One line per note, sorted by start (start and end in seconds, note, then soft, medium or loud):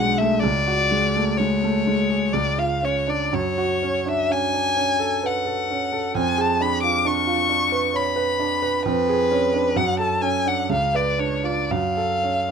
0.00 0.40 B1 soft
0.00 0.33 G#3 soft
0.00 0.44 D4 soft
0.00 0.19 F#5 medium
0.18 0.43 A3 soft
0.18 0.42 E5 medium
0.40 2.30 C#2 soft
0.40 1.39 D5 medium
0.67 1.05 F#4 soft
0.91 1.29 G#3 soft
1.16 1.40 A3 soft
1.38 1.78 G#3 soft
1.38 2.34 C#5 medium
1.64 1.87 A3 soft
1.87 2.25 G#3 soft
2.10 2.34 G#4 soft
2.33 3.30 C#2 soft
2.33 2.61 D5 medium
2.58 2.98 F4 soft
2.58 2.86 F5 medium
2.83 3.23 C#4 soft
2.83 3.11 C#5 medium
3.07 3.33 D4 soft
3.07 3.36 D5 soft
3.33 6.12 F#2 soft
3.33 4.10 C#5 medium
3.58 3.97 F#4 soft
3.83 4.21 C#4 soft
4.06 4.30 D4 soft
4.06 4.33 E5 medium
4.30 4.68 C#4 soft
4.30 5.28 G#5 medium
4.54 4.77 D4 soft
4.77 5.14 C#4 soft
4.99 5.37 A4 soft
5.23 5.47 B4 soft
5.23 6.16 F#5 medium
5.46 5.83 A4 soft
5.70 6.07 C#4 soft
5.92 6.16 A4 soft
6.15 8.81 F2 soft
6.15 6.42 G#5 medium
6.38 6.75 G#4 soft
6.38 6.63 A5 medium
6.61 6.97 D4 soft
6.61 6.82 B5 medium
6.83 7.06 F4 soft
6.83 7.08 D6 medium
7.05 7.41 D4 soft
7.05 7.98 C#6 medium
7.27 7.50 F4 soft
7.49 7.86 D4 soft
7.72 8.08 B4 soft
7.94 8.17 C#5 soft
7.94 8.86 B5 medium
8.16 8.53 B4 soft
8.40 8.76 D4 soft
8.62 8.86 B4 soft
8.86 9.74 F2 medium
8.86 9.78 B4 medium
9.09 9.46 G#4 soft
9.31 9.68 C#4 soft
9.54 9.77 D4 soft
9.76 10.67 F#2 soft
9.76 9.99 F#5 medium
9.99 10.36 A4 soft
9.99 10.23 A5 medium
10.22 10.60 C#4 soft
10.22 10.49 G#5 medium
10.46 10.70 D4 soft
10.46 10.71 F#5 medium
10.69 11.68 C#2 soft
10.69 10.97 F5 medium
10.95 11.35 B4 soft
10.95 11.21 D5 medium
11.19 11.60 D4 soft
11.19 11.47 C#5 medium
11.44 11.71 F4 soft
11.44 11.73 D5 soft
11.71 12.51 F#2 soft
11.71 12.51 F5 medium
11.97 12.39 A4 soft
12.23 12.51 C#4 soft